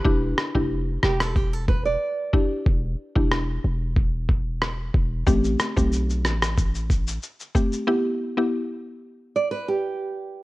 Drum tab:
SH |----------------|----------------|xxxxxxxxxxxxxxxx|----------------|
SD |--r---rr--------|----r-------r---|--r---rr--------|----------------|
BD |o--o----o-o---o-|o--o----o-o---o-|o--o----o-o---o-|----------------|